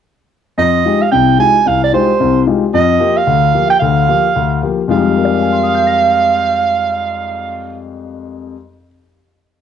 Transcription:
0.58 grand piano F2 F3, soprano saxophone D#5
0.85 grand piano G#3 D#4 F4 G4
1.02 soprano saxophone F5
1.12 grand piano C2 C3, soprano saxophone G5
1.38 grand piano G#3 D#4 F4 G4, soprano saxophone G#5
1.66 grand piano C2, soprano saxophone F5
1.84 soprano saxophone D5
1.93 grand piano G#3 D#4 F4 G4, soprano saxophone C5
2.20 grand piano C2 C3
2.46 grand piano G#3 D#4 F4 G4
2.74 grand piano F2 F3, soprano saxophone D#5
3.00 grand piano F3 A#3 F4 G4
3.17 soprano saxophone F5
3.27 grand piano D2 D3
3.54 grand piano F3 A#3 F4 G4
3.70 soprano saxophone G5
3.79 grand piano D2 D3, soprano saxophone F5
4.08 grand piano F3 A#3 F4 G4
4.36 grand piano D2
4.62 grand piano F3 A#3 F4 G4
4.88 grand piano F2 F3 G3 G#3 D#4, soprano saxophone F5
5.17 grand piano A#4
5.25 grand piano D5
5.33 grand piano F5
5.42 grand piano G#5
5.52 grand piano C6
5.63 grand piano D#6
5.74 grand piano G6
5.87 grand piano A#6

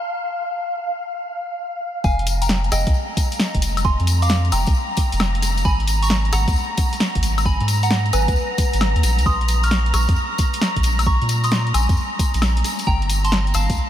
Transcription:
Already playing: string machine F5, synth bell A5
2.04 sub bass F1, synth bell F5 G#5, string machine A#5, kick, tambourine
2.19 closed hi-hat
2.27 open hi-hat, tambourine
2.42 synth bell G5 A#5, closed hi-hat, tambourine
2.49 snare, tambourine
2.64 closed hi-hat
2.72 sub bass F1, synth bell D#5 G5, cross-stick, open hi-hat, tambourine, high woodblock
2.87 sub bass C2, kick, closed hi-hat, tambourine
2.94 tambourine
3.17 kick, open hi-hat, tambourine
3.32 closed hi-hat, tambourine
3.40 snare, tambourine
3.55 sub bass F1, kick, closed hi-hat
3.62 open hi-hat, tambourine
3.77 closed hi-hat, tambourine, high woodblock
3.85 synth bell G#5 C6, kick, tambourine
4.00 sub bass F2, closed hi-hat
4.07 open hi-hat, tambourine
4.22 synth bell F5 D6, closed hi-hat, tambourine
4.29 snare, tambourine
4.45 closed hi-hat
4.52 sub bass F1, synth bell G5 A#5, open hi-hat, tambourine, high woodblock
4.66 sub bass C2, kick, open hi-hat, tambourine
4.75 tambourine
4.97 kick, open hi-hat, tambourine
5.12 sub bass F1, closed hi-hat, tambourine
5.20 snare, tambourine, high woodblock
5.35 closed hi-hat
5.42 cross-stick, open hi-hat, tambourine
5.57 closed hi-hat, tambourine
5.65 sub bass G#1, synth bell G#5 B5, kick, tambourine
5.80 closed hi-hat
5.87 open hi-hat, tambourine
6.03 synth bell A#5 C#6, closed hi-hat, tambourine
6.10 snare, tambourine
6.25 closed hi-hat
6.32 sub bass G#1, synth bell F#5 A#5, cross-stick, open hi-hat, tambourine, high woodblock
6.48 sub bass D#2, kick, closed hi-hat, tambourine
6.56 tambourine
6.77 kick, open hi-hat, tambourine
6.93 closed hi-hat, tambourine
7.00 snare, tambourine
7.15 sub bass G#1, kick, closed hi-hat
7.23 open hi-hat, tambourine
7.38 closed hi-hat, tambourine, high woodblock
7.45 synth bell G#5 B5, kick, tambourine
7.61 sub bass G#2, closed hi-hat
7.68 open hi-hat, tambourine
7.83 synth bell F#5 A#5, closed hi-hat, tambourine
7.91 snare, tambourine
8.06 closed hi-hat
8.13 sub bass G#1, synth bell B4 G#5, open hi-hat, tambourine, high woodblock
8.28 sub bass D#2, kick, open hi-hat, tambourine
8.36 tambourine
8.58 kick, open hi-hat, tambourine
8.73 sub bass G#1, closed hi-hat, tambourine
8.81 snare, high woodblock
8.96 sub bass D#2, closed hi-hat
9.03 sub bass A#1, cross-stick, open hi-hat, tambourine
9.18 sub bass C#2, closed hi-hat, tambourine
9.26 sub bass A#1, synth bell C6 D#6, kick, tambourine
9.41 closed hi-hat
9.48 open hi-hat, tambourine
9.63 synth bell C#6 F6, closed hi-hat, tambourine
9.71 snare, tambourine
9.86 closed hi-hat
9.94 sub bass A#1, synth bell A#5 C#6, cross-stick, open hi-hat, tambourine, high woodblock
10.09 sub bass F2, kick, closed hi-hat, tambourine
10.16 tambourine
10.38 kick, open hi-hat, tambourine
10.53 closed hi-hat, tambourine
10.61 snare, tambourine
10.76 sub bass A#1, kick, closed hi-hat
10.83 open hi-hat, tambourine
10.99 closed hi-hat, tambourine, high woodblock
11.06 synth bell A#5 C#6, kick, tambourine
11.21 sub bass A#2, closed hi-hat
11.29 open hi-hat, tambourine
11.44 synth bell C6 D#6, closed hi-hat, tambourine
11.51 snare, tambourine
11.67 closed hi-hat
11.74 sub bass A#1, synth bell G#5 C6, open hi-hat, tambourine, high woodblock
11.89 sub bass F2, kick, open hi-hat, tambourine
11.97 tambourine
12.19 kick, open hi-hat, tambourine
12.34 sub bass A#1, closed hi-hat, tambourine
12.42 snare, tambourine, high woodblock
12.57 closed hi-hat
12.64 cross-stick, open hi-hat, tambourine
12.79 closed hi-hat, tambourine
12.87 sub bass G1, synth bell G5 A#5, kick, tambourine
13.02 closed hi-hat
13.10 open hi-hat, tambourine
13.24 synth bell A5 C6, closed hi-hat, tambourine
13.32 snare, tambourine
13.47 closed hi-hat
13.54 sub bass G1, synth bell F5 A5, open hi-hat, tambourine, high woodblock
13.69 sub bass D2, kick, closed hi-hat, tambourine
13.77 tambourine

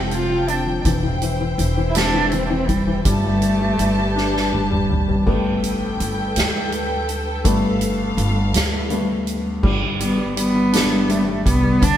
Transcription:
Already playing: upright bass F1, felt piano C3 F3 C4, string section F3 A4 G5
0.11 felt piano C4, cello F4, closed hi-hat
0.29 felt piano F3
0.47 felt piano C4, cello D4, closed hi-hat
0.67 felt piano F3
0.85 upright bass E1, felt piano E3, string section E4 C5, kick, closed hi-hat
1.03 felt piano E3
1.22 felt piano E3, closed hi-hat
1.40 felt piano E3
1.58 upright bass E1, felt piano E3, closed hi-hat
1.77 felt piano E3
1.89 cello E4
1.95 felt piano C4, cello D4, snare, closed hi-hat
2.14 felt piano E3
2.31 felt piano E3, cello C4, closed hi-hat
2.46 felt piano E3, cello D4
2.50 cello C4
2.69 felt piano E3, cello G3, kick, closed hi-hat
2.87 felt piano E3
3.05 upright bass G1, felt piano G3, cello A3, string section G4 B4 A5, kick, closed hi-hat
3.24 felt piano G3
3.42 felt piano G3, closed hi-hat
3.61 felt piano G3
3.79 upright bass G1, felt piano G3, closed hi-hat
3.98 felt piano G3
4.15 felt piano D4, snare
4.34 felt piano G3, snare
4.53 felt piano G3, high tom
4.70 felt piano G3, mid tom
4.89 felt piano G3, mid tom
5.08 felt piano G3, floor tom
5.26 upright bass G1, felt piano G3 A3 B3, string section A4 B4 G5, kick, crash
5.64 closed hi-hat
6.00 upright bass G1, closed hi-hat
6.36 upright bass D2, snare, closed hi-hat
6.72 closed hi-hat
7.09 closed hi-hat
7.44 upright bass G1, felt piano G3 A3 B3, string section F5, kick, closed hi-hat
7.81 closed hi-hat
8.17 upright bass G1, closed hi-hat
8.53 upright bass D2, snare, closed hi-hat
8.90 felt piano G3 A3 B3, closed hi-hat
9.27 closed hi-hat
9.63 upright bass G1, felt piano G3, kick, crash
9.82 felt piano G3
10.00 felt piano G3, cello B3, closed hi-hat
10.17 felt piano G3
10.36 felt piano G3, cello B3, closed hi-hat
10.55 felt piano G3
10.73 felt piano D4, snare, closed hi-hat
10.91 felt piano G3
11.09 felt piano G3, cello A3, closed hi-hat
11.18 cello B3
11.24 felt piano G3, cello A3
11.45 upright bass C2, felt piano G3, cello B3, kick, closed hi-hat
11.63 felt piano G3
11.81 upright bass D2, felt piano D3, cello D4, kick, closed hi-hat

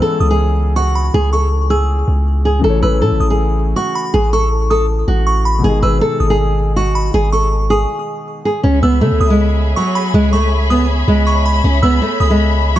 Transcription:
Already playing: grand piano E3 G#3 B3 C#4 G#4, synth bell E6
0.02 nylon-string guitar A4
0.20 808-style bass C#2, synth bell D#6
0.31 nylon-string guitar G#4
0.76 nylon-string guitar F#4, synth bell C#6
0.95 synth bell B5
1.14 808-style bass C#2, nylon-string guitar G#4
1.33 nylon-string guitar A4, synth bell C#6
1.70 nylon-string guitar G#4, synth bell E6
2.08 808-style bass C#2
2.45 nylon-string guitar G#4
2.59 grand piano C#3 E3
2.64 808-style bass A1, grand piano A3 E4, nylon-string guitar A4
2.69 grand piano C#5
2.82 808-style bass A1, nylon-string guitar B4, synth bell E6
3.02 808-style bass A2, nylon-string guitar A4
3.12 808-style bass A1
3.20 808-style bass A1, synth bell D#6
3.30 nylon-string guitar G#4
3.76 nylon-string guitar F#4, synth bell C#6
3.95 synth bell B5
4.14 808-style bass A1, nylon-string guitar G#4
4.33 nylon-string guitar A4, synth bell C#6
4.70 nylon-string guitar A4, synth bell D#6
5.08 808-style bass A1, nylon-string guitar F#4
5.27 synth bell C#6
5.45 synth bell B5
5.59 grand piano B2 D#3
5.64 808-style bass G#1, grand piano G#3 D#4, nylon-string guitar G#4
5.69 grand piano G#4
5.82 808-style bass G#1, nylon-string guitar B4, synth bell E6
6.01 nylon-string guitar A4
6.20 808-style bass G#1, synth bell D#6
6.30 nylon-string guitar G#4
6.76 nylon-string guitar F#4, synth bell C#6
6.95 synth bell B5
7.14 808-style bass G#1, nylon-string guitar G#4
7.32 nylon-string guitar A4, synth bell C#6
7.70 nylon-string guitar G#4, synth bell D#6
8.45 nylon-string guitar G#4
8.63 808-style bass C#2, nylon-string guitar C#4, string section G#4 C#5 E5 B5
8.83 808-style bass C#2, nylon-string guitar B3, synth bell E6
9.01 808-style bass C#3, nylon-string guitar A3
9.11 808-style bass C#2
9.20 808-style bass C#2, synth bell D#6
9.30 nylon-string guitar G#3
9.76 nylon-string guitar F#3, synth bell C#6
9.95 synth bell B5
10.14 808-style bass C#2, nylon-string guitar G#3
10.33 nylon-string guitar A3, synth bell C#6
10.70 nylon-string guitar B3, synth bell D#6
11.08 808-style bass C#2, nylon-string guitar G#3
11.27 synth bell C#6
11.46 synth bell B5
11.64 808-style bass C#2, nylon-string guitar C#4
11.83 808-style bass C#2, nylon-string guitar B3, synth bell E6
12.02 nylon-string guitar A3
12.20 808-style bass C#2, synth bell D#6
12.30 nylon-string guitar G#3
12.76 nylon-string guitar F#3, synth bell C#6

